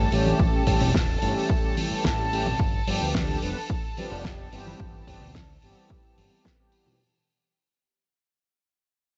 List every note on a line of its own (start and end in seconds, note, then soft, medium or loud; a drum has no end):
0.00 7.01 A4 medium
0.00 7.01 A5 medium
0.00 sub drop medium
0.11 0.32 A1 medium
0.11 0.64 E3 loud
0.11 0.64 G3 medium
0.11 0.64 A3 medium
0.11 0.64 C#4 medium
0.11 0.64 G4 loud
0.11 open hi-hat medium
0.26 high conga medium
0.39 0.59 A1 medium
0.39 kick loud
0.67 0.77 A1 loud
0.67 0.90 E3 medium
0.67 0.90 G3 medium
0.67 0.90 A3 medium
0.67 0.90 C#4 medium
0.67 0.90 G4 medium
0.67 kick medium
0.67 open hi-hat loud
0.81 1.16 E1 medium
0.81 low conga medium
0.95 kick loud
0.95 snare loud
0.95 high conga medium
1.21 1.32 G1 medium
1.21 2.28 E3 medium
1.21 2.29 G3 medium
1.21 2.29 A3 medium
1.21 2.29 C#4 medium
1.21 2.29 G4 medium
1.21 open hi-hat medium
1.50 kick loud
1.77 open hi-hat loud
1.77 high conga medium
1.91 muted fingered electric bass stroke soft
2.04 2.53 A1 medium
2.04 kick loud
2.04 snare loud
2.32 2.46 E3 medium
2.32 2.47 G3 medium
2.32 2.47 A3 medium
2.32 2.47 C#4 medium
2.32 2.47 G4 loud
2.32 open hi-hat loud
2.46 high conga medium
2.46 low conga medium
2.60 2.79 G1 medium
2.60 kick loud
2.87 2.97 G1 medium
2.87 3.39 F3 medium
2.87 3.39 G3 medium
2.87 3.39 B3 medium
2.87 3.39 D4 medium
2.87 3.39 G4 medium
2.87 open hi-hat loud
3.01 3.36 D2 medium
3.15 kick loud
3.15 snare loud
3.15 high conga medium
3.42 3.52 F1 medium
3.42 3.57 F3 medium
3.42 3.57 G3 medium
3.42 3.57 B3 medium
3.42 3.57 D4 medium
3.42 3.57 B4 medium
3.42 open hi-hat medium
3.70 kick loud
3.97 4.49 F3 medium
3.97 4.49 G3 medium
3.97 4.49 B3 medium
3.97 4.49 D4 medium
3.97 4.49 G4 loud
3.97 open hi-hat loud
3.97 high conga medium
4.12 4.46 F1 medium
4.25 kick loud
4.25 snare loud
4.52 4.72 G1 medium
4.52 5.04 E3 medium
4.52 5.04 G3 medium
4.52 5.04 B3 medium
4.52 5.04 C4 medium
4.52 5.04 G4 loud
4.52 open hi-hat medium
4.67 high conga medium
4.80 5.00 G1 medium
4.80 kick loud
5.07 5.17 G1 medium
5.07 5.30 E3 medium
5.07 5.30 G3 medium
5.07 5.30 B3 medium
5.07 5.31 C4 medium
5.07 5.31 G4 medium
5.07 kick medium
5.07 open hi-hat loud
5.22 5.56 D2 medium
5.22 low conga medium
5.35 kick loud
5.35 snare loud
5.35 high conga loud
5.62 5.73 G1 medium
5.62 6.56 E3 medium
5.62 6.56 G3 medium
5.62 6.56 B3 medium
5.62 6.56 C4 medium
5.62 6.57 G4 medium
5.62 open hi-hat medium
5.90 kick loud
6.18 6.28 G1 medium
6.18 open hi-hat medium
6.18 high conga medium
6.45 kick loud
6.45 snare loud
6.58 6.98 E3 medium
6.58 6.98 G3 medium
6.58 6.98 B3 medium
6.58 6.98 C4 medium
6.58 6.99 G4 medium
6.72 open hi-hat medium
6.86 high conga medium
6.86 low conga medium